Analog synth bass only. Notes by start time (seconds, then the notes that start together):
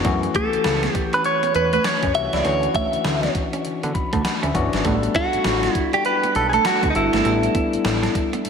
0.05 F#2
0.54 C#2
0.65 C#2
1.55 E2
2.03 F#2
2.15 C2
2.34 C#2
2.45 D2
2.94 D2
3.05 D2
3.65 D3
3.84 D3
4.13 D2
4.43 D2
4.55 G1
4.73 G#1
4.85 A1
5.34 A1
5.45 A1
6.35 B1
6.83 D2
6.95 G1
7.13 G#1
7.25 A1
7.74 A1
7.85 A1
8.45 A2